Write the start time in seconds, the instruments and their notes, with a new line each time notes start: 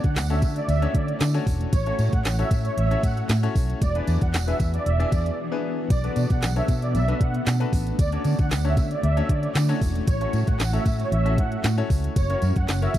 Already playing: ambient pad D3 A3 E4 F#4 C#5, grand piano C#4 D4 F#4 A4 C#5, downlifter
0.04 fingered electric bass D3, supersaw synth F#5, kick, closed hi-hat
0.16 fingered electric bass D2, snare, clap, closed hi-hat, tambourine
0.30 grand piano C#4 D4 F#4 A4 C#5, supersaw synth E5, closed hi-hat
0.42 fingered electric bass D3, kick, closed hi-hat, tambourine
0.56 supersaw synth D5, closed hi-hat
0.68 fingered electric bass D2, supersaw synth E5, closed hi-hat, tambourine
0.82 grand piano C#4 D4 F#4 A4 C#5, closed hi-hat
0.94 fingered electric bass D3, supersaw synth D5, kick, closed hi-hat
1.08 closed hi-hat
1.20 fingered electric bass D3, snare, clap, closed hi-hat, tambourine
1.34 grand piano C#4 D4 F#4 A4 C#5, closed hi-hat
1.47 fingered electric bass E1, kick, open hi-hat, tambourine
1.61 closed hi-hat
1.73 fingered electric bass A1, ambient pad F#4, supersaw synth C#5, kick, closed hi-hat, tambourine
1.86 grand piano C#4 E4 F#4 A4 C#5, closed hi-hat
1.99 fingered electric bass A2, closed hi-hat, tambourine
2.13 fingered electric bass A2, supersaw synth F#5, kick, closed hi-hat
2.25 fingered electric bass A1, snare, clap, closed hi-hat, tambourine
2.39 grand piano C#4 E4 F#4 A4 C#5, supersaw synth E5, closed hi-hat
2.51 fingered electric bass A2, kick, closed hi-hat, tambourine
2.65 supersaw synth C#5, closed hi-hat
2.77 fingered electric bass A1, supersaw synth E5, closed hi-hat
2.91 grand piano C#4 E4 F#4 A4 C#5, closed hi-hat
3.03 fingered electric bass A2, supersaw synth F#5, kick, closed hi-hat, tambourine
3.17 closed hi-hat
3.29 fingered electric bass A2, snare, clap, closed hi-hat, tambourine
3.43 grand piano C#4 E4 F#4 A4 C#5, closed hi-hat
3.55 fingered electric bass B1, kick, open hi-hat, tambourine
3.70 closed hi-hat
3.81 fingered electric bass E1, ambient pad E3 B3 D4 G#4, supersaw synth D5, kick, closed hi-hat, tambourine
3.95 grand piano B3 D4 E4 G#4 B4, closed hi-hat
4.07 fingered electric bass E2, closed hi-hat, tambourine
4.21 fingered electric bass E2, supersaw synth F#5, kick, closed hi-hat
4.34 fingered electric bass E1, snare, clap, closed hi-hat, tambourine
4.47 grand piano B3 D4 E4 G#4 B4, supersaw synth E5, closed hi-hat
4.60 fingered electric bass E2, kick, closed hi-hat, tambourine
4.74 supersaw synth D5, closed hi-hat
4.86 fingered electric bass E1, supersaw synth E5, closed hi-hat
4.99 grand piano B3 D4 E4 G#4 D5, closed hi-hat
5.12 fingered electric bass E2, supersaw synth D5, kick, closed hi-hat, tambourine
5.26 closed hi-hat
5.52 grand piano B3 D4 E4 G#4 B4
5.90 fingered electric bass B1, ambient pad A3 B3, supersaw synth D5, kick, closed hi-hat, tambourine
6.04 grand piano B3 D4 F#4 A4 B4, closed hi-hat
6.16 fingered electric bass B2, closed hi-hat, tambourine
6.30 fingered electric bass B2, supersaw synth F#5, kick, closed hi-hat
6.42 fingered electric bass B1, snare, clap, closed hi-hat, tambourine
6.56 grand piano B3 D4 F#4 A4 C#5, supersaw synth E5, closed hi-hat
6.68 fingered electric bass B2, kick, closed hi-hat, tambourine
6.82 supersaw synth D5, closed hi-hat
6.95 fingered electric bass B1, supersaw synth E5, closed hi-hat, tambourine
7.08 grand piano B3 D4 F#4 A4 B4, closed hi-hat
7.21 fingered electric bass B2, supersaw synth F#5, kick, closed hi-hat
7.34 closed hi-hat
7.47 fingered electric bass B2, snare, clap, closed hi-hat, tambourine
7.60 grand piano B3 D4 F#4 A4 B4, closed hi-hat
7.73 fingered electric bass A1, kick, open hi-hat, tambourine
7.87 closed hi-hat
7.99 fingered electric bass D2, ambient pad D3 E4 F#4 C#5, supersaw synth D5, kick, closed hi-hat, tambourine
8.12 grand piano C#4 D4 F#4 A4 C#5, closed hi-hat
8.25 fingered electric bass D3, closed hi-hat, tambourine
8.39 fingered electric bass D3, supersaw synth F#5, kick, closed hi-hat
8.51 fingered electric bass D2, snare, clap, closed hi-hat, tambourine
8.64 grand piano C#4 D4 F#4 A4 C#5, supersaw synth E5, closed hi-hat
8.77 fingered electric bass D3, kick, closed hi-hat, tambourine
8.91 supersaw synth D5, closed hi-hat
9.03 fingered electric bass D2, supersaw synth E5, closed hi-hat
9.17 grand piano C#4 D4 F#4 A4 C#5, closed hi-hat
9.29 fingered electric bass D3, supersaw synth D5, kick, closed hi-hat
9.43 closed hi-hat
9.55 fingered electric bass D3, snare, clap, closed hi-hat, tambourine
9.69 grand piano C#4 D4 F#4 A4 C#5, closed hi-hat
9.81 fingered electric bass E1, kick, open hi-hat, tambourine
9.95 closed hi-hat
10.07 fingered electric bass A1, ambient pad C#4, supersaw synth C#5, kick, closed hi-hat, tambourine
10.21 grand piano C#4 E4 F#4 A4 C#5, closed hi-hat
10.33 fingered electric bass A2, closed hi-hat, tambourine
10.47 fingered electric bass A2, supersaw synth F#5, kick, closed hi-hat
10.60 fingered electric bass A1, snare, clap, closed hi-hat, tambourine
10.73 grand piano C#4 E4 F#4 A4 C#5, supersaw synth E5, closed hi-hat
10.86 fingered electric bass A2, kick, closed hi-hat, tambourine
11.00 supersaw synth C#5, closed hi-hat
11.12 fingered electric bass A1, supersaw synth E5, closed hi-hat
11.25 grand piano C#4 E4 F#4 A4 E5, closed hi-hat
11.38 fingered electric bass A2, supersaw synth F#5, kick, closed hi-hat
11.52 closed hi-hat
11.64 fingered electric bass A2, snare, clap, closed hi-hat, tambourine
11.78 grand piano C#4 E4 F#4 A4 C#5, closed hi-hat
11.90 fingered electric bass C#2, kick, open hi-hat, tambourine
12.04 closed hi-hat
12.16 fingered electric bass F#1, ambient pad F#3 E4 G#4 A#4, supersaw synth C#5, kick, closed hi-hat, tambourine
12.30 grand piano C#4 E4 F#4 A#4 C#5, closed hi-hat
12.42 fingered electric bass F#2, closed hi-hat, tambourine
12.56 fingered electric bass F#2, supersaw synth F#5, kick, closed hi-hat
12.68 fingered electric bass F#1, snare, clap, closed hi-hat, tambourine
12.82 grand piano C#4 E4 F#4 A#4 C#5, supersaw synth E5, closed hi-hat
12.94 fingered electric bass F#2, kick, closed hi-hat, tambourine